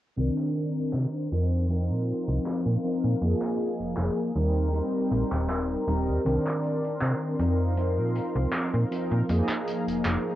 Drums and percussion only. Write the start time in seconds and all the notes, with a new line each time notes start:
0.18 closed hi-hat
0.38 clap
0.55 closed hi-hat
0.76 closed hi-hat
0.93 clap, closed hi-hat
1.32 closed hi-hat
1.70 closed hi-hat
2.08 closed hi-hat
2.46 clap, closed hi-hat
2.84 closed hi-hat
3.21 closed hi-hat
3.42 clap
3.60 closed hi-hat
3.80 closed hi-hat
3.97 clap, closed hi-hat
4.36 closed hi-hat
4.74 closed hi-hat
5.12 closed hi-hat
5.32 clap
5.50 clap, closed hi-hat
5.88 closed hi-hat
6.25 closed hi-hat
6.47 clap
6.63 closed hi-hat
6.84 closed hi-hat
7.01 clap, closed hi-hat
7.39 closed hi-hat
7.77 closed hi-hat
8.15 closed hi-hat
8.53 clap, closed hi-hat
8.92 closed hi-hat
9.29 closed hi-hat
9.49 clap
9.67 closed hi-hat
9.88 closed hi-hat
10.05 clap, closed hi-hat